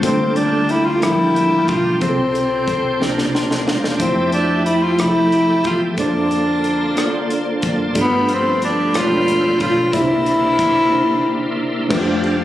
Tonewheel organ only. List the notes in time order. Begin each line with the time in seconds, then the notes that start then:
Already playing: A5
0.02 A#3 G4 G5
2.00 A4 C5 C6
2.99 A#4 D5 G5
3.98 G4 E5 A5
5.98 A#3 D5 A5 C6
7.97 A4 F5 G5 B5
9.91 A#4 D5 E5 C6
11.91 G4 D5 F5 A5